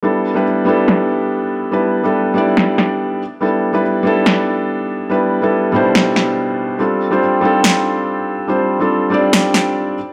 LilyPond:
<<
  \new Staff \with { instrumentName = "Felt piano" } { \time 4/4 \key g \mixolydian \tempo 4 = 142 <g b d' e' a'>8. <g b d' e' b'>16 r8 <g b d' e' a'>2~ <g b d' e' a'>8 | <g b d' e' b'>8. <g b d' e' a'>8. <g b d' e' d''>2 r8 | <g b d' e' a'>8. <g b d' e' b'>16 r8 <g b d' e' a'>2~ <g b d' e' a'>8 | <g b d' e' b'>8. <g b d' e' a'>8. <b, g d' e' c''>2~ <b, g d' e' c''>8 |
<g c' d' f' a'>8. <g c' d' f' c''>16 r8 <g c' d' f' a'>2~ <g c' d' f' a'>8 | <g c' d' f' c''>8. <g c' d' f' a'>8. <g c' d' f' d''>2 r8 | }
  \new DrumStaff \with { instrumentName = "Drums" } \drummode { \time 4/4 r4 r4 sn4 r4 | r4 r4 sn8 sn8 r4 | r4 r4 sn4 r4 | r4 r4 sn8 sn8 r4 |
r4 r4 sn4 r4 | r4 r4 sn8 sn8 r4 | }
>>